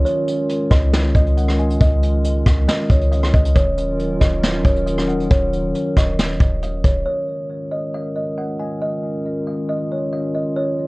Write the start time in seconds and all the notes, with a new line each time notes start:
Already playing: D#3 C#4 F4 A#4
0.05 G#3 C#5, closed hi-hat
0.28 closed hi-hat
0.49 closed hi-hat
0.71 C#2 D#5, kick, cross-stick, closed hi-hat
0.93 F5, snare, closed hi-hat
1.15 C#2 D#5, kick, closed hi-hat
1.26 closed hi-hat
1.37 F#5, closed hi-hat
1.48 cross-stick
1.59 G#5, closed hi-hat
1.70 closed hi-hat
1.81 C#2 D#5, kick, closed hi-hat
2.03 closed hi-hat
2.24 closed hi-hat
2.46 C#2 F5, kick, cross-stick, closed hi-hat
2.68 D#5, snare, closed hi-hat
2.90 C#2 C#5, kick, closed hi-hat
3.01 closed hi-hat
3.12 F5, closed hi-hat
3.23 cross-stick
3.34 C#2 D#5, kick, closed hi-hat
3.45 closed hi-hat
3.55 D#1 D#3 F#3 C#4 F4 A#4 C#5, kick, closed hi-hat
3.78 closed hi-hat
3.99 closed hi-hat
4.21 D#1 D#5, kick, cross-stick, closed hi-hat
4.43 F5, snare, closed hi-hat
4.65 D#1 C#5, kick, closed hi-hat
4.76 closed hi-hat
4.87 F5, closed hi-hat
4.98 cross-stick
5.08 F#5, closed hi-hat
5.20 closed hi-hat
5.31 D#1 C#5, kick, closed hi-hat
5.53 closed hi-hat
5.75 closed hi-hat
5.97 D#1 D#5, kick, cross-stick, closed hi-hat
6.18 snare, closed hi-hat
6.40 D#1, kick, closed hi-hat
6.62 F5, closed hi-hat
6.84 D#1 C#5, kick, closed hi-hat
7.06 D#3 G#3 C#4 F4 A#4 C#5
7.71 D#5
7.94 F5
8.16 D#5
8.38 F#5
8.59 G#5
8.82 D#5
9.47 F5
9.69 D#5
9.92 C#5
10.13 F5
10.35 D#5
10.56 F#3 A#4 C#5